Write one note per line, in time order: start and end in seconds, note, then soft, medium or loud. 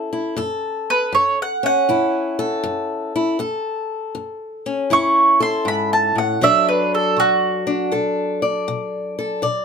0.00 0.33 F#2 medium
0.00 1.63 C#4 soft
0.00 0.12 E4 medium
0.00 0.37 A4 medium
0.13 0.39 E4 medium
0.36 1.08 F#2 medium
0.36 2.38 A4 medium
0.90 1.14 B4 medium
1.12 1.83 F#2 medium
1.12 1.38 C#5 medium
1.42 1.65 F#5 medium
1.63 3.36 C#4 medium
1.63 3.87 F#5 medium
1.89 2.59 F#2 medium
1.89 3.14 E4 medium
2.39 3.39 A4 medium
2.63 3.34 F#2 medium
3.16 3.37 E4 medium
3.39 4.10 F#2 medium
3.39 5.40 A4 medium
4.15 4.85 F#2 medium
4.66 6.39 C#4 medium
4.90 5.61 F#2 medium
4.90 6.39 E4 medium
4.90 5.40 C#6 medium
5.40 6.44 A4 medium
5.40 5.66 C6 medium
5.65 6.15 G#2 medium
5.65 5.91 B5 medium
5.93 6.16 A5 medium
6.15 6.41 A2 medium
6.15 6.42 F#5 medium
6.41 7.12 B2 medium
6.41 9.65 F#3 medium
6.41 7.66 D4 medium
6.41 7.92 A4 medium
6.41 8.41 D5 medium
6.41 6.67 E5 medium
6.68 6.92 B4 medium
6.95 7.17 A4 medium
7.17 7.87 B2 medium
7.17 7.91 F#4 loud
7.67 9.40 D4 medium
7.92 8.62 B2 medium
7.92 9.18 A4 medium
8.42 9.40 D5 medium
8.68 9.38 B2 medium
9.19 9.45 A4 medium
9.42 9.65 B2 medium
9.42 9.65 D5 medium